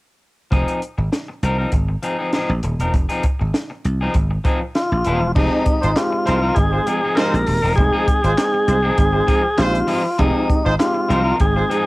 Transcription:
0.51 slap bass F1, clean electric guitar F3 C4 D#4 G#4, kick, closed hi-hat
0.68 closed hi-hat
0.82 closed hi-hat
0.98 slap bass G#1, muted clean electric guitar stroke
1.12 muted clean electric guitar stroke, snare, closed hi-hat
1.28 muted clean electric guitar stroke
1.43 slap bass C2, clean electric guitar F3 C4 D#4 A#4, closed hi-hat
1.58 clean electric guitar F3 C4 D#4 A#4
1.72 slap bass G#1, muted clean electric guitar stroke, kick, closed hi-hat
1.89 muted clean electric guitar stroke
2.03 clean electric guitar F3 C4 D#4 G#4, closed hi-hat
2.19 clean electric guitar F3 C4 D#4 G#4
2.33 clean electric guitar F3 C4 D#4 G#4, snare, closed hi-hat
2.49 slap bass A#1
2.63 slap bass D#1, muted clean electric guitar stroke, closed hi-hat
2.79 slap bass E1, clean electric guitar F3 C4 D#4 A#4, closed hi-hat
2.94 slap bass F1, muted clean electric guitar stroke, kick, closed hi-hat
3.09 clean electric guitar F3 C4 D#4 G#4, closed hi-hat
3.23 muted clean electric guitar stroke, kick, closed hi-hat
3.40 slap bass G#1, muted clean electric guitar stroke
3.54 muted clean electric guitar stroke, snare, closed hi-hat
3.70 muted clean electric guitar stroke
3.85 slap bass C2, closed hi-hat
4.01 clean electric guitar F3 C4 D#4 G#4
4.14 slap bass G#1, muted clean electric guitar stroke, kick, closed hi-hat
4.31 muted clean electric guitar stroke
4.44 clean electric guitar F3 C4 D#4 G#4, kick, closed hi-hat
4.61 muted clean electric guitar stroke
4.75 tonewheel organ F4, muted clean electric guitar stroke, snare, closed hi-hat
4.92 slap bass A#1, muted clean electric guitar stroke
5.04 slap bass D#1, clean electric guitar F3 C4 D#4 G#4, closed hi-hat
5.21 slap bass E1, muted clean electric guitar stroke
5.35 slap bass F1, clean electric guitar F3 C4 D#4 G#4, tine electric piano G#3 C4 D#4 G4, tonewheel organ D#4, kick, crash
5.66 kick, closed hi-hat
5.82 slap bass G#1, horn section G#3 F4 C5, muted clean electric guitar stroke, closed hi-hat
5.96 tine electric piano G#3 C4 D#4 G4, tonewheel organ F4, muted clean electric guitar stroke, snare, clap, closed hi-hat
6.12 muted clean electric guitar stroke
6.26 slap bass C2, clean electric guitar F3 C4 D#4 A#4, horn section G#3 F4 C5, closed hi-hat
6.42 clean electric guitar F3 C4 D#4 A#4
6.55 slap bass G#1, tine electric piano G#3 C4 D#4 G#4, tonewheel organ G#4, kick, closed hi-hat
6.73 horn section G#3 F4 C5, muted clean electric guitar stroke
6.87 clean electric guitar F3 C4 D#4 G#4, closed hi-hat
7.03 clean electric guitar F3 C4 D#4 G#4
7.15 clean electric guitar F3 C4 D#4 G#4, horn section G#3 F4 C5, tine electric piano G#3 C4 D#4 G4, tonewheel organ A#4, snare, clap, closed hi-hat
7.34 slap bass A#1, closed hi-hat
7.46 slap bass D#1, muted clean electric guitar stroke, open hi-hat
7.62 slap bass E1, clean electric guitar F3 C4 D#4 A#4
7.76 slap bass F1, tine electric piano G#3 C4 D#4 G#4, tonewheel organ G#4, kick, closed hi-hat
7.93 clean electric guitar F3 C4 D#4 G#4
8.08 kick, closed hi-hat
8.23 slap bass G#1, horn section G#3 F4 C5, muted clean electric guitar stroke, closed hi-hat
8.37 tine electric piano G#3 C4 D#4 G#4, muted clean electric guitar stroke, snare, clap, closed hi-hat
8.54 muted clean electric guitar stroke
8.68 slap bass C2, horn section G#3 F4 C5, closed hi-hat
8.83 clean electric guitar F3 C4 D#4 G#4
8.98 slap bass G#1, tine electric piano G#3 C4 D#4 G#4, muted clean electric guitar stroke, kick, closed hi-hat
9.13 horn section G#3 F4 C5, muted clean electric guitar stroke
9.27 clean electric guitar F3 C4 D#4 G#4, kick, closed hi-hat
9.43 muted clean electric guitar stroke
9.57 slap bass A#1, tine electric piano G#3 C4 D#4 G4, horn section G#3 F4 C5, tonewheel organ F4, muted clean electric guitar stroke, snare, clap, closed hi-hat
9.73 muted clean electric guitar stroke, closed hi-hat
9.87 clean electric guitar F3 C4 D#4 G#4, open hi-hat
10.03 muted clean electric guitar stroke
10.18 slap bass F1, clean electric guitar F3 C4 D#4 G#4, tine electric piano G#3 C4 D#4 G4, tonewheel organ D#4, kick, closed hi-hat
10.50 kick, closed hi-hat
10.65 slap bass G#1, horn section G#3 F4 C5, muted clean electric guitar stroke
10.78 tine electric piano G#3 C4 D#4 G4, tonewheel organ F4, muted clean electric guitar stroke, snare, clap, closed hi-hat
10.94 muted clean electric guitar stroke
11.09 slap bass C2, clean electric guitar F3 C4 D#4 A#4, horn section G#3 F4 C5, closed hi-hat
11.24 clean electric guitar F3 C4 D#4 A#4
11.40 slap bass G#1, tine electric piano G#3 C4 D#4 G#4, tonewheel organ G#4, muted clean electric guitar stroke, kick, closed hi-hat
11.56 horn section G#3 F4 C5, muted clean electric guitar stroke
11.70 clean electric guitar F3 C4 D#4 G#4, closed hi-hat

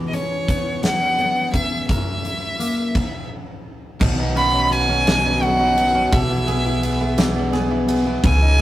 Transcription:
Already playing: steel-string acoustic guitar E3 B3
0.08 violin D#5
0.12 steel-string acoustic guitar C#4, violin C#5, closed hi-hat
0.48 steel-string acoustic guitar B3, kick, closed hi-hat
0.83 steel-string acoustic guitar C#4, violin F#5, snare, closed hi-hat
1.18 steel-string acoustic guitar B3, closed hi-hat
1.53 steel-string acoustic guitar C#4, violin E5, kick, closed hi-hat
1.88 steel-string acoustic guitar F#2, violin E5, kick, closed hi-hat
2.25 steel-string acoustic guitar E4, closed hi-hat
2.59 steel-string acoustic guitar A#3, closed hi-hat
2.95 kick, crash
4.00 upright bass B1, steel-string acoustic guitar B2, clean electric guitar D#3, kick, crash
4.18 clean electric guitar B3, steel-string acoustic guitar D#4
4.35 steel-string acoustic guitar C#4, clean electric guitar F#4, violin B5, ride
4.53 clean electric guitar C#4, steel-string acoustic guitar D#4
4.71 clean electric guitar B3, steel-string acoustic guitar F#4, violin G#5, ride
4.89 steel-string acoustic guitar C#4, clean electric guitar C#4
5.06 steel-string acoustic guitar B2, clean electric guitar D#3, snare, ride
5.24 clean electric guitar B3, steel-string acoustic guitar D#4
5.41 steel-string acoustic guitar C#4, clean electric guitar F#4, violin F#5, ride
5.59 clean electric guitar C#4, steel-string acoustic guitar D#4
5.77 clean electric guitar B3, steel-string acoustic guitar F#4, ride
5.95 clean electric guitar C#4, steel-string acoustic guitar C#4
6.12 upright bass B1, steel-string acoustic guitar B2, clean electric guitar E3, violin E5, kick, ride
6.30 clean electric guitar B3, steel-string acoustic guitar E4
6.47 steel-string acoustic guitar B3, clean electric guitar G#4, ride
6.65 clean electric guitar E4, steel-string acoustic guitar E4
6.83 clean electric guitar B3, steel-string acoustic guitar G#4, ride
7.01 steel-string acoustic guitar B3, clean electric guitar E4
7.18 steel-string acoustic guitar B2, clean electric guitar E3, snare, ride
7.36 clean electric guitar B3, steel-string acoustic guitar E4
7.53 steel-string acoustic guitar B3, clean electric guitar G#4, snare, ride
7.71 clean electric guitar E4, steel-string acoustic guitar E4
7.88 clean electric guitar B3, steel-string acoustic guitar G#4, ride
8.06 steel-string acoustic guitar B3, clean electric guitar E4
8.23 upright bass C#2, steel-string acoustic guitar C#3, clean electric guitar E3, violin G#5, kick, ride
8.42 clean electric guitar G#3, steel-string acoustic guitar D#4

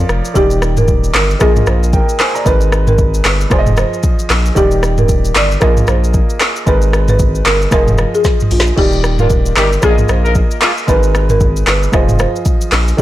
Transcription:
Already playing: grand piano F3 F4 A#4 C#5 D5
0.09 sub bass F1, cross-stick, shaker
0.25 shaker
0.34 sub bass D#1, grand piano D#3 D#4 G4 D5, marimba G4, kick, shaker
0.50 shaker
0.62 cross-stick, shaker
0.77 marimba A#4, mid tom, shaker
0.88 kick, shaker
1.04 shaker
1.14 sub bass G1, marimba A#4, cross-stick, clap, open hi-hat, shaker
1.30 shaker
1.39 sub bass A#1, grand piano A#3 F4 G#4 D#5, marimba G#4, kick, cross-stick, shaker
1.56 mid tom, shaker
1.66 sub bass A#1, marimba C5, cross-stick, shaker
1.83 shaker
1.93 grand piano A#4 G5, kick, shaker
2.09 shaker
2.20 grand piano C5 G#5, cross-stick, clap, open hi-hat, shaker
2.35 grand piano D5 A#5, shaker
2.45 sub bass G#1, grand piano G#3 D#4 A#4 B4, marimba B4, kick, shaker
2.61 shaker
2.72 cross-stick, shaker
2.87 marimba A#4, mid tom, shaker
2.98 kick, shaker
3.14 shaker
3.25 sub bass G1, marimba B4, cross-stick, clap, open hi-hat, shaker
3.41 shaker
3.50 sub bass F1, grand piano F3 F4 G#4 D5, marimba C5, kick, cross-stick, shaker
3.59 grand piano D#5
3.66 mid tom, shaker
3.77 marimba C5, cross-stick, shaker
3.93 shaker
4.03 kick, shaker
4.19 shaker
4.30 sub bass A#1, cross-stick, clap, open hi-hat, shaker
4.46 shaker
4.55 sub bass D#1, grand piano D#3 D#4 G4 D5, marimba G4, kick, shaker
4.71 shaker
4.83 cross-stick, shaker
4.98 marimba A#4, mid tom, shaker
5.09 kick, shaker
5.25 shaker
5.35 sub bass G1, marimba D5, cross-stick, clap, open hi-hat, shaker
5.51 shaker
5.60 sub bass A#1, grand piano A#3 F4 G#4 D#5, marimba A#4, kick, cross-stick, shaker
5.77 mid tom, shaker
5.87 sub bass A#1, marimba C5, cross-stick, shaker
6.04 shaker
6.14 kick, shaker
6.30 shaker
6.40 cross-stick, clap, open hi-hat, shaker
6.56 shaker
6.66 sub bass G#1, grand piano G#3 D#4 A#4 B4, marimba B4, kick, shaker
6.82 shaker
6.93 cross-stick, shaker
7.08 marimba B4, mid tom, shaker
7.19 kick, shaker
7.35 shaker
7.46 sub bass G1, marimba A#4, cross-stick, clap, open hi-hat, shaker
7.62 shaker
7.71 sub bass F1, grand piano F3 F4 G#4 D#5, marimba A#4, kick, cross-stick, shaker
7.88 mid tom, shaker
7.98 cross-stick, shaker
8.15 marimba G#4, shaker
8.24 kick, snare, shaker
8.40 mid tom, shaker
8.51 sub bass A#1, marimba F4, open hi-hat, shaker
8.60 snare
8.67 shaker
8.76 sub bass D#1, grand piano D#3 D#4 G4 D5, marimba G4, kick, crash
8.92 shaker
9.04 cross-stick, shaker
9.19 horn section A#3 D4 F4, marimba A#4, mid tom, shaker
9.30 kick, shaker
9.46 shaker
9.56 sub bass G1, horn section G3 D#4 G4, marimba A#4, cross-stick, clap, open hi-hat, shaker
9.73 shaker
9.81 sub bass A#1, grand piano A#3 F4 G#4 D5, horn section D#4 F4 G#4, marimba G#4, kick, cross-stick, shaker
9.90 grand piano D#5
9.98 mid tom, shaker
10.08 sub bass A#1, marimba C5, cross-stick, shaker
10.24 horn section D#4 F4 A#4, shaker
10.35 kick, shaker
10.51 shaker
10.62 horn section G#3 A#3 F4, cross-stick, clap, open hi-hat, shaker
10.77 shaker
10.87 sub bass G#1, grand piano G#3 D#4 A#4 B4, marimba B4, kick, shaker
11.03 shaker
11.15 cross-stick, shaker
11.29 marimba A#4, mid tom, shaker
11.40 kick, shaker
11.56 shaker
11.67 sub bass G1, marimba B4, cross-stick, clap, open hi-hat, shaker
11.83 shaker
11.92 sub bass F1, grand piano F3 F4 G#4 D#5, marimba C5, kick, cross-stick, shaker
12.09 mid tom, shaker
12.19 marimba C5, cross-stick, shaker
12.36 shaker
12.45 kick, shaker
12.61 shaker
12.72 sub bass A#1, cross-stick, clap, open hi-hat, shaker
12.88 shaker
12.97 sub bass D#1, grand piano D#3 D#4, kick, shaker

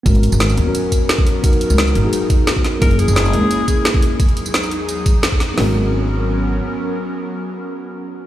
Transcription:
0.03 upright bass G#1, analog synth pad F#3 B3 C#4 A#4, tine electric piano B3 C#4 F#4, kick, closed hi-hat, tambourine
0.09 tine electric piano A#4
0.15 closed hi-hat
0.23 closed hi-hat, tambourine
0.32 upright bass G#1, tambourine
0.40 snare, closed hi-hat, tambourine
0.49 tambourine
0.57 upright bass D#2, closed hi-hat
0.66 tine electric piano B3 C#4 F#4 A#4
0.75 closed hi-hat, tambourine
0.92 kick, closed hi-hat, tambourine
1.09 snare, closed hi-hat, tambourine
1.18 kick
1.27 closed hi-hat
1.41 tine electric piano B3 D#4 F#4, analog synth pad D#4, kick, closed hi-hat, tambourine
1.46 tine electric piano A#4
1.53 closed hi-hat
1.61 closed hi-hat, tambourine
1.70 upright bass C#2, tambourine
1.78 snare, closed hi-hat, tambourine
1.87 tambourine
1.95 upright bass G#1, closed hi-hat
2.03 tine electric piano B3 D#4 F#4 G#4
2.13 closed hi-hat, tambourine
2.30 kick, closed hi-hat, tambourine
2.47 snare, closed hi-hat, tambourine
2.56 kick
2.64 snare, closed hi-hat
2.79 upright bass F#1, analog synth pad G#3 E4, tine electric piano A#3 C#4 E4, alto saxophone A#4, kick, closed hi-hat, tambourine
2.84 tine electric piano G#4
2.91 closed hi-hat
2.99 alto saxophone G#4, closed hi-hat, tambourine
3.08 upright bass F#1, tambourine
3.16 snare, closed hi-hat, tambourine
3.25 tambourine
3.33 upright bass C#2, closed hi-hat
3.41 tine electric piano A#3 C#4 E4 G#4
3.51 closed hi-hat, tambourine
3.68 kick, closed hi-hat, tambourine
3.85 snare, closed hi-hat, tambourine
3.94 kick
4.02 closed hi-hat
4.20 analog synth pad E2 F#3 D#4 G#4, kick, closed hi-hat, tambourine
4.29 closed hi-hat
4.37 closed hi-hat, tambourine
4.46 tambourine
4.54 snare, closed hi-hat, tambourine
4.63 tambourine
4.71 closed hi-hat
4.89 closed hi-hat, tambourine
5.06 kick, closed hi-hat, tambourine
5.23 snare, closed hi-hat, tambourine
5.32 kick
5.40 snare, closed hi-hat
5.54 tine electric piano B3 C#4, analog synth pad B3 A#4, snare, open hi-hat
5.58 upright bass G#1, analog synth pad F#3 C#4, tine electric piano F#4 A#4

